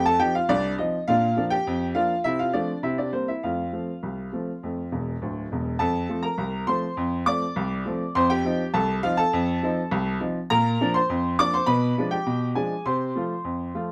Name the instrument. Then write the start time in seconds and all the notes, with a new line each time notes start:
upright piano
Already playing: F2
0.06 A4 A5
0.19 F3 C4 D#4 G4 G5
0.35 F4 F5
0.49 C2 D4 D5
0.78 F3 C4 D#4 D#5
1.08 A#2 D4 F4 F5
1.37 F3 A#3 D4
1.50 G4 G5
1.67 F2
1.95 F3 A#3 D4 F4 F5
2.24 C3 E4 E5
2.39 F4 F5
2.53 F3 A3 C4 D4 D5
2.83 C3 E4 E5
2.98 D4 D5
3.12 G3 A#3 C4 C5
3.28 E4 E5
3.43 F2 A3 F4 F5
3.73 F3 A3 C4
4.03 C2
4.33 F3 A3 C4
4.63 F2 A3
4.92 E1 E2
5.22 D1 D2
5.52 E1 E2
5.79 F2 A4 A5
6.09 F3 A3 C4
6.23 A#4 A#5
6.38 C2
6.67 F3 A3 C4 C5 C6
6.97 F2
7.26 F3 A3 C4 D5 D6
7.56 C2
7.86 F3 A3 C4
8.15 F2 C5 C6
8.30 G4 G5
8.45 F3 C4 D#4
8.74 C2 A4 A5
9.03 F3 C4 D#4 F4 F5
9.17 A4 A5
9.33 F2
9.63 F3 C4 D#4
9.91 C2
10.21 F3 C4 D#4
10.50 A#2 A#4 A#5
10.81 F3 A#3 D4
10.94 C5 C6
11.10 F2
11.39 F3 A#3 D4 D5 D6
11.54 C5 C6
11.66 B2 B4 B5
11.98 F3 G#3 D4
12.11 G4 G5
12.26 B2
12.55 F3 G#3 D4 G#4 G#5
12.86 C3 C5 C6
13.15 F3 A3 F4
13.45 F2
13.75 F3 A3 F4